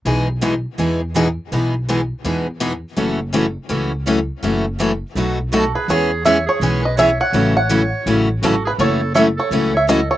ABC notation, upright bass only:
X:1
M:4/4
L:1/8
Q:"Swing" 1/4=165
K:E
V:1 name="Upright bass" clef=bass
B,,,4 E,,4 | B,,,4 E,,4 | F,,,4 C,,4 | F,,,4 B,,,4 |
E,,4 B,,,4 | A,,,4 A,,,2 G,,,2 | F,,,4 C,,4 |]